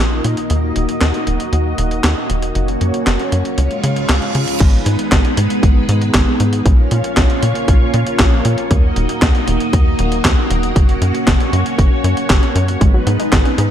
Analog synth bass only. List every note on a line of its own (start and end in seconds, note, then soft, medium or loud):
0.00 0.21 A#1 medium
0.25 0.36 A#2 medium
0.50 0.72 D#2 medium
0.76 0.87 D#1 medium
1.01 1.13 D#2 medium
1.27 1.38 D#1 medium
1.53 1.75 D#2 loud
1.78 2.00 D#1 loud
2.04 2.15 D#2 loud
2.30 2.52 D#1 medium
2.55 2.77 F#1 loud
2.81 2.92 F#2 medium
3.07 3.18 F#1 medium
3.32 3.43 F#2 medium
3.58 3.69 C#2 loud
3.84 4.06 C#3 loud
4.09 4.20 C#2 loud
4.35 4.46 C#3 medium
4.60 4.83 G#1 loud
4.86 4.97 G#2 medium
5.12 5.23 G#1 loud
5.38 5.49 G#2 medium
5.63 5.85 G#1 loud
5.89 6.11 G#2 loud
6.14 6.25 G#1 loud
6.40 6.62 G#2 medium
6.66 6.88 A#1 loud
6.92 7.02 A#2 medium
7.17 7.28 A#1 medium
7.43 7.54 A#2 medium
7.68 7.79 A#1 loud
7.94 8.05 A#2 loud
8.20 8.42 A#1 medium
8.45 8.56 A#2 medium
8.71 8.93 D#2 loud
8.96 9.07 D#1 medium
9.22 9.33 D#2 loud
9.48 9.59 D#1 medium
9.73 9.95 D#2 loud
9.99 10.21 D#1 loud
10.25 10.36 D#2 loud
10.50 10.72 D#1 loud
10.76 10.98 F#1 loud
11.02 11.13 F#2 medium
11.27 11.38 F#1 loud
11.53 11.64 F#2 medium
11.79 11.89 F#1 loud
12.04 12.15 F#2 medium
12.30 12.41 F#1 loud
12.55 12.77 F#2 medium
12.81 13.03 G#1 loud
13.07 13.18 G#2 medium
13.32 13.43 G#1 loud
13.58 13.69 G#2 medium